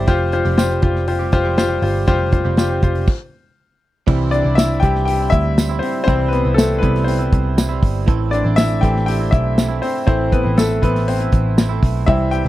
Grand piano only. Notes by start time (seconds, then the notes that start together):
0.08 F4 G4 C5
0.33 F4 G4 C5
0.58 F4 G4 C5
0.83 F4 G4 C5
1.08 F4 G4 C5
1.33 F4 G4 C5
1.58 F4 G4 C5
1.83 F4 G4 C5
2.08 F4 G4 C5
2.33 F4 G4 C5
2.58 F4 G4 C5
2.83 F4 G4 C5
4.07 E3 G3 C4
4.31 D4 D5
4.55 E4 E5
4.80 G4 G5
5.05 G4 G5
5.30 E4 E5
5.79 C4 C5
6.04 E3 G3 C4 C5
6.28 B4
6.33 B3
6.54 A3 A4
6.79 B3 B4
7.04 C4 C5
8.31 D4 D5
8.56 E4 E5
8.81 E3 A3 C4 G4 G5
9.06 G4 G5
9.31 E4 E5
9.82 C4 C5
10.07 E3 A3 C4 C5
10.32 B3 B4
10.58 A3 A4
10.82 B3 B4
11.08 C4 C5
12.06 E3 G3 C4 E4 E5
12.31 G4 G5